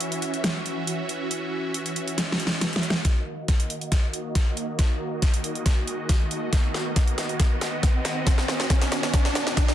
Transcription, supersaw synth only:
0, 0, Header, 1, 2, 480
1, 0, Start_track
1, 0, Tempo, 434783
1, 1445, Time_signature, 4, 2, 24, 8
1, 10757, End_track
2, 0, Start_track
2, 0, Title_t, "Supersaw synth"
2, 0, Program_c, 0, 81
2, 0, Note_on_c, 0, 52, 80
2, 0, Note_on_c, 0, 61, 77
2, 0, Note_on_c, 0, 66, 79
2, 0, Note_on_c, 0, 76, 91
2, 3322, Note_off_c, 0, 52, 0
2, 3322, Note_off_c, 0, 61, 0
2, 3322, Note_off_c, 0, 76, 0
2, 3328, Note_off_c, 0, 66, 0
2, 3365, Note_on_c, 0, 51, 82
2, 3365, Note_on_c, 0, 66, 77
2, 3365, Note_on_c, 0, 75, 90
2, 3366, Note_on_c, 0, 58, 73
2, 7167, Note_off_c, 0, 58, 0
2, 7206, Note_on_c, 0, 59, 78
2, 10757, Note_off_c, 0, 51, 0
2, 10757, Note_off_c, 0, 59, 0
2, 10757, Note_off_c, 0, 66, 0
2, 10757, Note_off_c, 0, 75, 0
2, 10757, End_track
0, 0, End_of_file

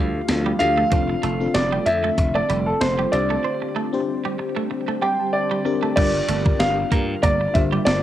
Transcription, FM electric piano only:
0, 0, Header, 1, 2, 480
1, 0, Start_track
1, 0, Tempo, 631579
1, 698, Time_signature, 4, 2, 24, 8
1, 6101, End_track
2, 0, Start_track
2, 0, Title_t, "FM electric piano"
2, 0, Program_c, 0, 5
2, 0, Control_c, 0, 64, 127
2, 0, Note_on_c, 0, 57, 70
2, 0, Note_on_c, 0, 62, 60
2, 0, Note_on_c, 0, 67, 73
2, 0, Note_on_c, 0, 69, 73
2, 453, Note_off_c, 0, 57, 0
2, 453, Note_on_c, 0, 57, 71
2, 456, Note_off_c, 0, 62, 0
2, 456, Note_on_c, 0, 62, 60
2, 459, Note_on_c, 0, 65, 62
2, 461, Note_off_c, 0, 67, 0
2, 461, Note_on_c, 0, 67, 74
2, 617, Note_off_c, 0, 57, 0
2, 619, Note_off_c, 0, 62, 0
2, 621, Note_off_c, 0, 65, 0
2, 622, Note_off_c, 0, 67, 0
2, 693, Note_on_c, 0, 60, 70
2, 696, Note_on_c, 0, 62, 66
2, 700, Note_on_c, 0, 65, 63
2, 703, Note_off_c, 0, 69, 0
2, 703, Note_on_c, 0, 69, 77
2, 707, Control_c, 0, 64, 0
2, 853, Control_c, 0, 64, 127
2, 927, Note_off_c, 0, 60, 0
2, 928, Note_off_c, 0, 62, 0
2, 930, Note_off_c, 0, 65, 0
2, 932, Note_off_c, 0, 69, 0
2, 1065, Note_on_c, 0, 60, 65
2, 1067, Note_on_c, 0, 62, 61
2, 1070, Note_on_c, 0, 65, 62
2, 1074, Note_on_c, 0, 69, 76
2, 1672, Note_off_c, 0, 60, 0
2, 1673, Note_off_c, 0, 62, 0
2, 1674, Note_off_c, 0, 65, 0
2, 1676, Note_off_c, 0, 69, 0
2, 2371, Note_on_c, 0, 60, 71
2, 2374, Note_on_c, 0, 62, 66
2, 2378, Note_on_c, 0, 67, 64
2, 2381, Note_on_c, 0, 72, 80
2, 2386, Control_c, 0, 64, 0
2, 2536, Control_c, 0, 64, 127
2, 2854, Note_off_c, 0, 60, 0
2, 2856, Note_off_c, 0, 62, 0
2, 2858, Note_off_c, 0, 67, 0
2, 2859, Note_off_c, 0, 72, 0
2, 2984, Note_on_c, 0, 60, 84
2, 2987, Note_on_c, 0, 62, 72
2, 2991, Note_on_c, 0, 67, 75
2, 2993, Note_on_c, 0, 72, 95
2, 3591, Note_off_c, 0, 60, 0
2, 3593, Note_off_c, 0, 62, 0
2, 3595, Note_off_c, 0, 67, 0
2, 3596, Note_off_c, 0, 72, 0
2, 3818, Note_on_c, 0, 84, 67
2, 3940, Note_off_c, 0, 84, 0
2, 3949, Note_on_c, 0, 81, 63
2, 4050, Note_off_c, 0, 81, 0
2, 4058, Note_on_c, 0, 79, 66
2, 4293, Note_on_c, 0, 60, 82
2, 4296, Note_on_c, 0, 62, 70
2, 4299, Note_on_c, 0, 67, 75
2, 4301, Note_on_c, 0, 70, 88
2, 4457, Note_off_c, 0, 60, 0
2, 4459, Note_off_c, 0, 62, 0
2, 4461, Note_off_c, 0, 67, 0
2, 4462, Note_off_c, 0, 70, 0
2, 4507, Note_off_c, 0, 79, 0
2, 4531, Note_on_c, 0, 62, 74
2, 4536, Note_on_c, 0, 65, 66
2, 4537, Note_on_c, 0, 67, 65
2, 4541, Note_on_c, 0, 70, 81
2, 4548, Control_c, 0, 64, 0
2, 4658, Control_c, 0, 64, 127
2, 5160, Note_off_c, 0, 62, 0
2, 5162, Note_off_c, 0, 65, 0
2, 5163, Note_off_c, 0, 67, 0
2, 5165, Note_off_c, 0, 70, 0
2, 5734, Note_on_c, 0, 62, 72
2, 5738, Note_on_c, 0, 65, 66
2, 5741, Note_on_c, 0, 67, 66
2, 5744, Note_on_c, 0, 72, 79
2, 6101, Note_off_c, 0, 62, 0
2, 6101, Note_off_c, 0, 65, 0
2, 6101, Note_off_c, 0, 67, 0
2, 6101, Note_off_c, 0, 72, 0
2, 6101, End_track
0, 0, End_of_file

